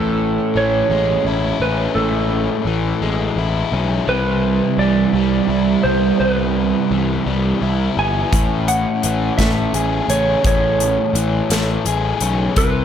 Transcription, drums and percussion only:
8.33 kick loud
8.33 closed hi-hat medium
8.68 closed hi-hat medium
9.03 closed hi-hat medium
9.39 kick medium
9.39 snare loud
9.39 closed hi-hat medium
9.74 closed hi-hat medium
10.10 closed hi-hat medium
10.45 kick loud
10.45 closed hi-hat medium
10.80 closed hi-hat medium
11.15 closed hi-hat medium
11.50 snare loud
11.50 closed hi-hat medium
11.86 closed hi-hat medium
12.21 closed hi-hat medium
12.56 kick loud
12.56 closed hi-hat medium

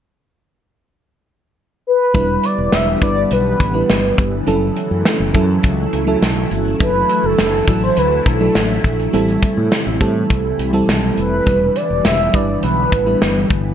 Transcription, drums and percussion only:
2.14 kick loud
2.14 closed hi-hat medium
2.44 closed hi-hat medium
2.72 snare medium
2.72 closed hi-hat loud
3.02 kick medium
3.02 closed hi-hat medium
3.31 closed hi-hat medium
3.60 kick medium
3.60 closed hi-hat medium
3.90 snare loud
3.90 closed hi-hat medium
4.18 kick medium
4.18 closed hi-hat medium
4.47 closed hi-hat medium
4.76 closed hi-hat medium
5.05 snare medium
5.05 closed hi-hat loud
5.34 kick medium
5.34 closed hi-hat medium
5.63 kick medium
5.63 closed hi-hat medium
5.93 closed hi-hat medium
6.22 snare loud
6.22 closed hi-hat medium
6.51 closed hi-hat medium
6.80 kick loud
6.80 closed hi-hat medium
7.10 closed hi-hat medium
7.38 snare loud
7.38 closed hi-hat medium
7.68 kick medium
7.68 closed hi-hat medium
7.97 closed hi-hat medium
8.26 kick loud
8.26 closed hi-hat medium
8.55 snare loud
8.55 closed hi-hat medium
8.84 kick medium
8.84 closed hi-hat medium
8.99 closed hi-hat soft
9.14 closed hi-hat medium
9.28 closed hi-hat soft
9.43 kick medium
9.43 closed hi-hat medium
9.72 snare medium
9.72 closed hi-hat loud
10.01 kick medium
10.01 closed hi-hat medium
10.30 kick medium
10.30 closed hi-hat medium
10.59 closed hi-hat medium
10.89 snare loud
10.89 closed hi-hat medium
11.18 closed hi-hat medium
11.47 kick loud
11.47 closed hi-hat medium
11.76 closed hi-hat medium
12.05 snare loud
12.05 closed hi-hat medium
12.34 kick medium
12.34 closed hi-hat medium
12.63 closed hi-hat medium
12.92 kick medium
12.92 closed hi-hat medium
13.22 snare loud
13.22 closed hi-hat medium
13.50 kick medium
13.50 closed hi-hat medium

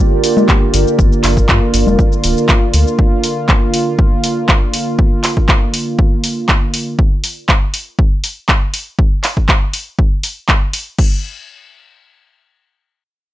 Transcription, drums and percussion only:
0.24 open hi-hat loud
0.24 cabasa medium
0.37 low conga medium
0.37 cabasa soft
0.49 kick loud
0.49 clap loud
0.49 cabasa soft
0.74 open hi-hat medium
0.74 cabasa medium
0.88 cabasa soft
0.99 kick loud
0.99 cabasa soft
1.13 cabasa soft
1.24 clap medium
1.24 open hi-hat loud
1.24 cabasa medium
1.37 kick medium
1.37 cabasa soft
1.49 kick loud
1.49 clap loud
1.49 cabasa soft
1.74 open hi-hat medium
1.74 cabasa medium
1.87 low conga medium
1.87 cabasa soft
1.99 kick loud
1.99 cabasa soft
2.13 cabasa soft
2.24 open hi-hat loud
2.24 cabasa medium
2.38 cabasa soft
2.49 kick loud
2.49 clap loud
2.49 cabasa soft
2.74 open hi-hat medium
2.74 cabasa medium
2.88 cabasa soft
2.99 kick loud
3.24 open hi-hat loud
3.49 kick loud
3.49 clap loud
3.74 open hi-hat medium
3.99 kick loud
4.24 open hi-hat loud
4.49 kick loud
4.49 clap loud
4.74 open hi-hat medium
4.99 kick loud
5.24 clap medium
5.24 open hi-hat loud
5.37 kick medium
5.49 kick loud
5.49 clap loud
5.74 open hi-hat medium
5.99 kick loud
6.24 open hi-hat medium
6.49 kick loud
6.49 clap loud
6.74 open hi-hat medium
6.99 kick loud
7.24 open hi-hat medium
7.49 kick loud
7.49 clap loud
7.74 open hi-hat medium
7.99 kick loud
8.24 open hi-hat medium
8.49 kick loud
8.49 clap loud
8.74 open hi-hat medium
8.99 kick loud
9.24 clap medium
9.24 open hi-hat medium
9.37 kick medium
9.49 kick loud
9.49 clap loud
9.73 open hi-hat medium
9.99 kick loud
10.23 open hi-hat medium
10.49 kick loud
10.49 clap loud
10.73 open hi-hat medium
10.98 kick loud
10.98 crash medium

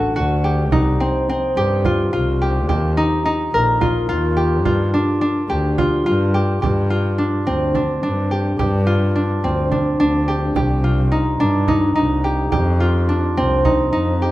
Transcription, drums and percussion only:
0.72 frame drum medium
1.85 frame drum soft
2.69 frame drum soft
3.81 frame drum medium
4.66 frame drum medium
4.95 frame drum soft
5.79 frame drum medium
6.07 frame drum soft
6.63 frame drum medium
7.75 frame drum soft
8.59 frame drum medium
9.72 frame drum soft
10.56 frame drum medium
11.68 frame drum medium
12.52 frame drum medium
13.09 frame drum soft
13.65 frame drum soft

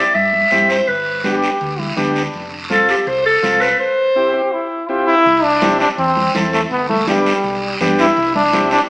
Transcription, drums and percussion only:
0.15 long guiro medium
0.33 high conga medium
0.51 high conga medium
0.51 short guiro medium
0.69 short guiro medium
0.88 long guiro medium
1.24 high conga medium
1.24 short guiro medium
1.43 short guiro medium
1.61 long guiro medium
1.79 high conga medium
1.97 high conga medium
1.97 short guiro medium
2.16 short guiro medium
2.34 long guiro medium
2.70 high conga medium
2.70 short guiro medium
2.89 short guiro medium
3.07 long guiro medium
3.43 high conga medium
3.43 short guiro medium
3.62 short guiro medium
5.26 high conga soft
5.26 long guiro medium
5.62 high conga loud
5.62 short guiro medium
5.80 short guiro medium
5.98 high conga soft
5.98 long guiro medium
6.17 high conga medium
6.35 high conga medium
6.35 short guiro medium
6.53 short guiro medium
6.71 high conga soft
6.71 long guiro medium
6.89 high conga medium
7.07 high conga loud
7.07 short guiro medium
7.26 short guiro medium
7.44 high conga soft
7.44 long guiro medium
7.81 high conga medium
7.81 low conga medium
7.81 short guiro medium
7.98 short guiro medium
8.17 high conga soft
8.17 long guiro medium
8.35 high conga medium
8.53 high conga medium
8.53 short guiro medium
8.71 short guiro medium

